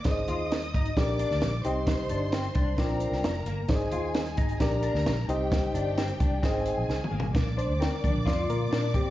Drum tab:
HH |x-----x-----x--x--x--x--x-----x-----x-----x-----|x-----x-----x--x--x-----x-----x-----x-----x-----|x-----x-----x--x--x--x--x-----x-----x-----x-----|x-----x-----x--x--x-----x-----x-----------------|
SD |o-----------o-----------o--------o--o-----------|o-----------o-----------o--------o--o-----------|o-----------o-----------o--------o--o-----------|o-----------o-----------o-----------o-----------|
T2 |------------------------------------------------|------------------------------------------------|------------------------------------------------|----------------------------------------o-------|
FT |------------------------------------------------|------------------------------------------------|------------------------------------------------|--------------------------------------------o---|
BD |o-----------------o-----o-----------------------|o-----------------o-----o-----------------------|o-----------------o-----o-----------------------|o-----------------o-----o-----------------------|

HH |x-----x-----x-----x-----x-----x-----x-----x-----|
SD |o-----------o-----------o-----------o-----------|
T2 |------------------------------------------------|
FT |------------------------------------------------|
BD |o-----------------o-----o-----------------o-----|